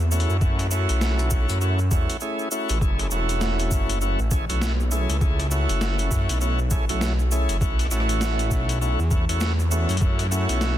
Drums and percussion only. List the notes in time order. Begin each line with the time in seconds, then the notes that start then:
0.11 cabasa
0.20 closed hi-hat
0.30 cabasa
0.41 kick, cabasa
0.59 cross-stick, closed hi-hat, cabasa
0.71 cabasa
0.89 closed hi-hat, cabasa
1.01 snare, cabasa
1.19 closed hi-hat, cabasa
1.30 kick, cabasa
1.49 closed hi-hat, cabasa
1.61 cabasa
1.79 cabasa
1.91 kick, cabasa
2.10 closed hi-hat, cabasa
2.20 cabasa
2.39 cabasa
2.51 cabasa
2.69 closed hi-hat, cabasa
2.81 kick, cabasa
2.99 cross-stick, closed hi-hat, cabasa
3.11 cabasa
3.29 closed hi-hat, cabasa
3.41 snare, cabasa
3.59 closed hi-hat, cabasa
3.71 kick, cabasa
3.89 closed hi-hat, cabasa
4.01 cabasa
4.19 cabasa
4.31 kick, cabasa
4.49 closed hi-hat, cabasa
4.61 snare, cabasa
4.80 cabasa
4.91 cabasa
5.09 closed hi-hat, cabasa
5.21 kick, cabasa
5.39 cross-stick, closed hi-hat, cabasa
5.51 cabasa
5.69 closed hi-hat, cabasa
5.81 snare, cabasa
5.99 closed hi-hat, cabasa
6.11 kick, cabasa
6.29 closed hi-hat, cabasa
6.41 cabasa
6.59 cabasa
6.71 kick, cabasa
6.89 closed hi-hat, cabasa
7.01 snare, cabasa
7.19 cabasa
7.31 cabasa
7.49 closed hi-hat, cabasa
7.61 kick, cabasa
7.79 cross-stick, closed hi-hat, cabasa
7.85 cross-stick
7.91 cross-stick, cabasa
8.00 cross-stick
8.09 closed hi-hat, cabasa
8.21 snare, cabasa
8.39 closed hi-hat, cabasa
8.51 kick, cabasa
8.69 closed hi-hat, cabasa
8.82 cabasa
8.99 cabasa
9.11 kick, cabasa
9.29 closed hi-hat, cabasa
9.40 snare, cabasa
9.60 cabasa
9.71 cabasa
9.89 closed hi-hat, cabasa
9.91 closed hi-hat
9.97 closed hi-hat
10.01 kick, cabasa
10.19 cross-stick, closed hi-hat, cabasa
10.32 cabasa
10.49 closed hi-hat, cabasa
10.61 snare, cabasa